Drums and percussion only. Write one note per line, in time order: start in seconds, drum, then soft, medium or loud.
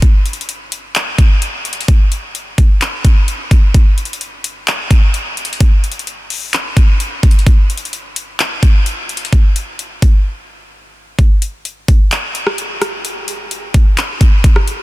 0.02 kick loud
0.02 closed hi-hat medium
0.26 closed hi-hat medium
0.33 closed hi-hat medium
0.41 closed hi-hat medium
0.49 closed hi-hat medium
0.72 closed hi-hat medium
0.95 clap loud
0.95 closed hi-hat medium
1.18 kick medium
1.18 closed hi-hat medium
1.42 closed hi-hat medium
1.65 closed hi-hat medium
1.73 closed hi-hat medium
1.81 closed hi-hat medium
1.88 kick loud
1.88 closed hi-hat medium
2.12 closed hi-hat medium
2.35 closed hi-hat medium
2.58 kick loud
2.58 closed hi-hat medium
2.81 clap loud
2.81 closed hi-hat medium
3.05 kick medium
3.05 closed hi-hat medium
3.28 closed hi-hat medium
3.51 kick medium
3.51 closed hi-hat medium
3.74 kick loud
3.74 closed hi-hat medium
3.98 closed hi-hat medium
4.05 closed hi-hat medium
4.13 closed hi-hat medium
4.21 closed hi-hat medium
4.44 closed hi-hat medium
4.67 clap loud
4.67 closed hi-hat medium
4.91 kick medium
4.91 closed hi-hat medium
5.14 closed hi-hat medium
5.37 closed hi-hat medium
5.45 closed hi-hat medium
5.53 closed hi-hat medium
5.61 kick loud
5.61 closed hi-hat medium
5.84 closed hi-hat medium
5.92 closed hi-hat medium
5.99 closed hi-hat medium
6.07 closed hi-hat medium
6.30 open hi-hat medium
6.53 clap loud
6.53 closed hi-hat medium
6.77 kick medium
6.77 closed hi-hat medium
7.00 closed hi-hat medium
7.23 kick medium
7.23 closed hi-hat medium
7.31 closed hi-hat medium
7.39 closed hi-hat medium
7.47 kick loud
7.47 closed hi-hat medium
7.70 closed hi-hat medium
7.77 closed hi-hat medium
7.85 closed hi-hat medium
7.93 closed hi-hat medium
8.16 closed hi-hat medium
8.39 clap loud
8.39 closed hi-hat medium
8.63 kick medium
8.63 closed hi-hat medium
8.86 closed hi-hat medium
9.09 closed hi-hat medium
9.17 closed hi-hat medium
9.25 closed hi-hat medium
9.33 kick loud
9.33 closed hi-hat medium
9.56 closed hi-hat medium
9.79 closed hi-hat medium
10.02 kick loud
10.02 closed hi-hat medium
11.19 kick loud
11.19 closed hi-hat medium
11.42 closed hi-hat medium
11.65 closed hi-hat medium
11.88 kick loud
11.88 closed hi-hat medium
12.11 clap loud
12.11 closed hi-hat medium
12.35 closed hi-hat medium
12.47 cross-stick medium
12.58 closed hi-hat medium
12.82 cross-stick medium
12.82 closed hi-hat medium
13.05 closed hi-hat medium
13.28 closed hi-hat medium
13.51 closed hi-hat medium
13.74 kick loud
13.74 closed hi-hat medium
13.97 clap loud
13.97 closed hi-hat medium
14.21 kick medium
14.21 closed hi-hat medium
14.44 kick loud
14.44 closed hi-hat medium
14.56 cross-stick loud
14.68 closed hi-hat medium